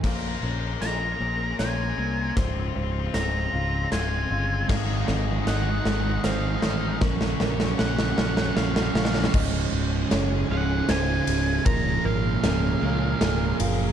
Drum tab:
CC |x-----------------------|------------------------|x-----------------------|------------------------|
RD |------------------------|------------------------|------------------------|------------------------|
HH |--------x-------x-------|x-------x-------x-------|--------x-------x-------|------------------------|
SD |o-------o-------o-------|o-------o-------o-------|o---o---o---o---o---o---|o-o-o-o-o-o-o-o-o-o-oooo|
BD |o-----------------------|o-----------------------|o-----------------------|o-----------------------|

CC |x-----------------------|------------------------|
RD |--------x-------x---x---|x-------x-------x---x---|
HH |------------------------|------------------------|
SD |--------o-------o-------|--------o-------o-------|
BD |o-----------------------|o-----------------------|